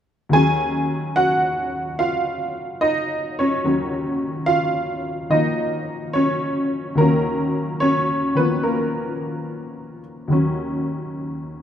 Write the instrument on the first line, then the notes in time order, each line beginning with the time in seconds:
honky-tonk piano
0.29 D#2 D#3 F#3 G#4 G#5
0.34 C#4
1.16 F#4 F#5
1.99 F4 F5
2.81 D#4 D#5
3.39 C#4 C#5
3.64 D#2 D#3 F#3 C#4
4.46 F4 F5
5.30 D#3 F3 A#3 D#4 D#5
6.13 C#4 C#5
6.95 D#2 D#3 F#3 A#4
7.00 A#3 C#4
7.80 C#4 C#5
8.35 D#3 F3 A#3 B4
8.39 B3
8.63 A#3 A#4
10.28 D#2 D#3 F#3
10.32 C#4